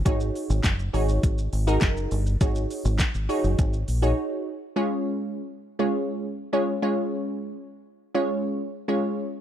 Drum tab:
HH |x-o-x-o-x-o-x-o-|x-o-x-o-x-o-----|----------------|----------------|
SH |xxxxxxxxxxxxxxxx|xxxxxxxxxxxx----|----------------|----------------|
CP |----x-------x---|----x-----------|----------------|----------------|
SD |----o-------o---|----o-----------|----------------|----------------|
BD |o---o---o---o---|o---o---o-------|----------------|----------------|